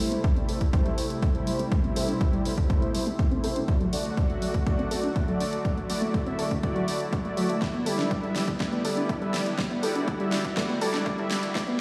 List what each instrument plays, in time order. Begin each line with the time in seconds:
Already playing: analog synth pad C3 G3 A3 E4
0.00 supersaw synth A3 E4 C5
0.12 synth pluck A3, closed hi-hat
0.24 synth pluck A3, kick, closed hi-hat
0.36 supersaw synth A3 E4 D5, synth pluck C4, closed hi-hat
0.49 supersaw synth A3 E4 C5, synth pluck A4, open hi-hat
0.61 synth pluck D4, kick, closed hi-hat
0.73 synth pluck A3, supersaw synth A3 E4 C5, kick, closed hi-hat
0.86 synth pluck G3, closed hi-hat
0.98 supersaw synth A3 E4 C5, open hi-hat
1.10 closed hi-hat
1.22 kick, closed hi-hat
1.35 synth pluck A3, supersaw synth A3 E4 C5, closed hi-hat
1.47 synth pluck G3, supersaw synth A3 E4 C5, open hi-hat
1.59 synth pluck A3, closed hi-hat
1.72 analog synth pad B2, synth pluck A3, supersaw synth A3 E4 C5, kick, closed hi-hat
1.84 synth pluck C4, closed hi-hat
1.96 supersaw synth A3 E4 C5, synth pluck A4, open hi-hat
2.09 synth pluck D4, closed hi-hat
2.21 synth pluck A3, kick, closed hi-hat
2.33 synth pluck G3, supersaw synth A3 E4 D5, closed hi-hat
2.45 supersaw synth A3 E4 C5, open hi-hat
2.58 kick, closed hi-hat
2.70 supersaw synth A3 E4 C5, kick, closed hi-hat
2.82 synth pluck A3, closed hi-hat
2.94 synth pluck G3, supersaw synth A3 E4 C5, open hi-hat
3.07 synth pluck A3, closed hi-hat
3.19 synth pluck A3, kick, closed hi-hat
3.31 supersaw synth A3 E4 C5, synth pluck C4, closed hi-hat
3.44 supersaw synth A3 E4 C5, synth pluck A4, open hi-hat
3.56 synth pluck D4, closed hi-hat
3.68 analog synth pad D3 F#3 A3 F#4, supersaw synth A3 F#4 D5, synth pluck A3, kick, closed hi-hat
3.81 synth pluck F#3, closed hi-hat
3.93 supersaw synth A3 F#4 D5, open hi-hat
4.05 closed hi-hat
4.17 kick, closed hi-hat
4.30 synth pluck A3, supersaw synth A3 F#4 E5, closed hi-hat
4.42 synth pluck F#3, supersaw synth A3 F#4 D5, open hi-hat
4.54 synth pluck A3, kick, closed hi-hat
4.67 synth pluck A3, supersaw synth A3 F#4 D5, kick, closed hi-hat
4.79 synth pluck C4, closed hi-hat
4.91 supersaw synth A3 F#4 D5, synth pluck A4, open hi-hat
5.04 synth pluck D4, closed hi-hat
5.16 synth pluck A3, kick, closed hi-hat
5.28 synth pluck F#3, supersaw synth A3 F#4 D5, closed hi-hat
5.40 supersaw synth A3 F#4 D5, open hi-hat
5.53 closed hi-hat
5.65 supersaw synth A3 F#4 D5, analog synth pad E4, kick, closed hi-hat
5.77 synth pluck A3, closed hi-hat
5.90 synth pluck F#3, supersaw synth A3 F#4 D5, open hi-hat
6.02 synth pluck A3, closed hi-hat
6.14 synth pluck A3, kick, closed hi-hat
6.26 supersaw synth A3 F#4 E5, synth pluck C4, closed hi-hat
6.39 supersaw synth A3 F#4 D5, synth pluck A4, open hi-hat
6.51 synth pluck D4, kick, closed hi-hat
6.63 synth pluck A3, supersaw synth A3 F#4 D5, kick, closed hi-hat
6.76 synth pluck F#3, closed hi-hat
6.88 supersaw synth A3 F#4 D5, open hi-hat
7.00 closed hi-hat
7.13 kick, closed hi-hat
7.25 synth pluck A3, supersaw synth A3 F#4 D5, closed hi-hat
7.37 synth pluck F#3, supersaw synth A3 F#4 D5, open hi-hat
7.49 synth pluck A3, closed hi-hat
7.62 analog synth pad D3 G3 B3, supersaw synth G3 E4 D5, synth pluck A3, kick, snare, closed hi-hat, riser
7.74 synth pluck B3, closed hi-hat
7.86 supersaw synth G3 E4 D5, synth pluck A4, open hi-hat
7.99 synth pluck D4, snare
8.11 synth pluck A3, kick, closed hi-hat
8.23 synth pluck G3, supersaw synth G3 E4 E5, closed hi-hat
8.36 supersaw synth G3 E4 D5, snare, open hi-hat
8.48 kick, closed hi-hat
8.60 supersaw synth G3 E4 D5, synth pluck A3, kick, snare, closed hi-hat
8.72 synth pluck B3, closed hi-hat
8.85 supersaw synth G3 E4 D5, synth pluck A4, open hi-hat
8.97 synth pluck D4, closed hi-hat
9.09 synth pluck A3, kick, closed hi-hat
9.22 synth pluck G3, supersaw synth G3 E4 E5, closed hi-hat
9.34 supersaw synth G3 E4 D5, snare, open hi-hat
9.46 closed hi-hat
9.58 supersaw synth G3 E4 D5, synth pluck A3, analog synth pad F#4, kick, snare, closed hi-hat
9.71 synth pluck B3, closed hi-hat
9.83 supersaw synth G3 E4 D5, synth pluck A4, open hi-hat
9.95 synth pluck D4, closed hi-hat
10.08 synth pluck A3, kick, closed hi-hat
10.20 synth pluck G3, supersaw synth G3 E4 E5, closed hi-hat
10.32 supersaw synth G3 E4 D5, snare, open hi-hat
10.45 kick, closed hi-hat
10.57 supersaw synth G3 E4 D5, synth pluck A3, kick, snare, closed hi-hat
10.69 synth pluck B3, closed hi-hat
10.81 supersaw synth G3 E4 D5, synth pluck A4, open hi-hat
10.94 synth pluck D4, snare, closed hi-hat
11.06 synth pluck A3, kick, closed hi-hat
11.18 synth pluck G3, supersaw synth G3 E4 E5, closed hi-hat
11.31 supersaw synth G3 E4 D5, snare, open hi-hat
11.43 closed hi-hat
11.55 analog synth pad C3 A3 E4, supersaw synth G3 E4 D5, synth pluck A3, kick, snare, closed hi-hat
11.67 synth pluck B3, closed hi-hat